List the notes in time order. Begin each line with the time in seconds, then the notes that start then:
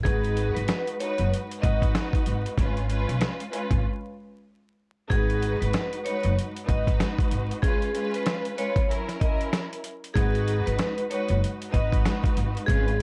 0.03 G#1 G#3 D#4 F#4 G#4 B4, kick, closed hi-hat
0.24 closed hi-hat
0.37 closed hi-hat
0.55 G#1 B4, closed hi-hat
0.68 snare, closed hi-hat
0.87 closed hi-hat
0.99 G#3 D#4 F#4 B4 C#5, closed hi-hat
1.18 F#1, closed hi-hat
1.34 closed hi-hat
1.51 closed hi-hat
1.60 G#1 G#3 D#4 F#4 B4 D#5, kick, closed hi-hat
1.82 kick, closed hi-hat
1.95 snare, closed hi-hat
2.13 kick, closed hi-hat
2.26 G#1, closed hi-hat
2.46 closed hi-hat
2.58 G#1 G#3 C#4 F4 B4, kick, closed hi-hat
2.77 closed hi-hat
2.88 G#3 C#4 F4 B4, closed hi-hat
3.09 B1, closed hi-hat
3.21 snare, closed hi-hat
3.40 closed hi-hat
3.51 G#3 C#4 F4 B4, closed hi-hat
3.71 G#1, kick, closed hi-hat
5.09 G#1 G#3 D#4 F#4 G#4 B4, kick, closed hi-hat
5.30 closed hi-hat
5.42 closed hi-hat
5.60 G#1 B4, closed hi-hat
5.73 snare, closed hi-hat
5.93 closed hi-hat
6.04 G#3 D#4 F#4 B4 C#5, closed hi-hat
6.23 F#1, closed hi-hat
6.39 closed hi-hat
6.57 closed hi-hat
6.65 G#1 G#3 D#4 F#4 B4, kick, closed hi-hat
6.70 D#5
6.87 kick, closed hi-hat
7.00 snare, closed hi-hat
7.18 kick, closed hi-hat
7.31 G#1, closed hi-hat
7.51 closed hi-hat
7.62 G#3 C#4 F4 G#4 B4, kick, closed hi-hat
7.82 closed hi-hat
7.93 G#3 C#4 F4 B4, closed hi-hat
8.14 B4, closed hi-hat
8.26 snare, closed hi-hat
8.45 closed hi-hat
8.56 G#3 C#4 F4 B4 C#5, closed hi-hat
8.76 kick, closed hi-hat
8.88 F#3 C#4 E4 A#4, closed hi-hat
9.09 snare, closed hi-hat
9.20 F#3 C#4 E4 A#4 D#5, kick, closed hi-hat
9.41 closed hi-hat
9.53 snare, closed hi-hat
9.73 closed hi-hat
9.84 closed hi-hat
10.04 closed hi-hat
10.14 G#1 G#3 D#4 F#4 G#4 B4, kick, closed hi-hat
10.35 closed hi-hat
10.48 closed hi-hat
10.66 G#1 B4, closed hi-hat
10.79 snare, closed hi-hat
10.98 closed hi-hat
11.10 G#3 D#4 F#4 B4 C#5, closed hi-hat
11.29 F#1, closed hi-hat
11.44 closed hi-hat
11.62 closed hi-hat
11.70 G#1 G#3 D#4 F#4 B4 D#5, kick, closed hi-hat
11.92 kick, closed hi-hat
12.05 snare, closed hi-hat
12.24 kick, closed hi-hat
12.37 G#1, closed hi-hat
12.57 closed hi-hat
12.66 G#1 G#3 C#4 F4 G#4 B4, kick, closed hi-hat
12.88 closed hi-hat
12.98 G#3 C#4